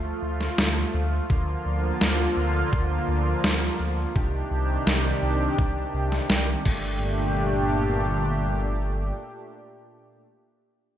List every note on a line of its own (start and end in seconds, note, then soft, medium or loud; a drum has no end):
0.00 0.13 D2 medium
0.00 1.26 F3 medium
0.00 1.26 A3 medium
0.00 1.26 F4 medium
0.23 0.49 D2 medium
0.41 snare soft
0.58 0.85 D2 medium
0.58 snare loud
0.94 1.20 D2 medium
1.30 1.56 D2 medium
1.30 4.13 D3 medium
1.30 4.13 F3 medium
1.30 4.13 A#3 medium
1.30 4.13 F4 medium
1.30 kick loud
1.66 1.92 D2 medium
2.01 2.27 D2 medium
2.01 snare loud
2.37 2.63 D2 medium
2.73 2.99 D2 medium
2.73 kick loud
3.08 3.34 D2 medium
3.44 3.70 D2 medium
3.44 snare loud
3.80 4.06 D2 loud
4.16 4.42 C2 loud
4.16 6.63 C3 medium
4.16 6.63 D#3 medium
4.16 6.63 D4 medium
4.16 6.63 G4 medium
4.16 kick loud
4.51 4.77 C2 medium
4.87 5.13 C2 medium
4.87 snare loud
5.23 5.49 C2 medium
5.59 5.85 C2 medium
5.59 kick loud
5.94 6.20 C2 medium
6.12 snare soft
6.30 6.56 C2 medium
6.30 snare loud
6.65 9.12 G1 medium
6.65 10.23 A#2 medium
6.65 10.23 A3 medium
6.65 10.23 D4 medium
6.65 10.23 G4 medium
6.65 kick loud
6.65 crash medium